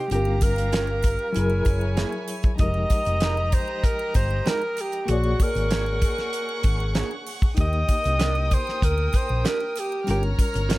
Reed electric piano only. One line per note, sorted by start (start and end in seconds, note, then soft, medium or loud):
0.00 0.10 C3 soft
0.00 0.11 C4 soft
0.00 0.11 D#4 soft
0.00 0.12 C5 medium
0.08 1.31 G3 medium
0.08 1.33 C#4 medium
0.12 1.34 F4 medium
0.12 1.35 A#4 medium
1.33 2.56 F#3 medium
1.33 2.57 E4 medium
1.37 2.58 G#4 medium
1.37 2.59 A#4 medium
2.56 5.03 F3 medium
2.56 5.04 D#4 medium
2.56 5.05 G4 medium
2.61 5.05 G#3 medium
2.61 5.06 A#4 medium
5.05 7.52 A#3 medium
5.05 7.53 F#4 medium
5.05 7.54 G#4 medium
5.11 7.55 C#5 medium
5.11 7.56 D5 medium
7.55 10.03 A#3 medium
7.55 10.02 D#4 medium
7.59 10.04 G4 medium
7.59 10.05 D#5 medium
10.04 10.78 G3 medium
10.04 10.78 C#4 medium
10.04 10.78 F4 medium
10.11 10.78 A#4 medium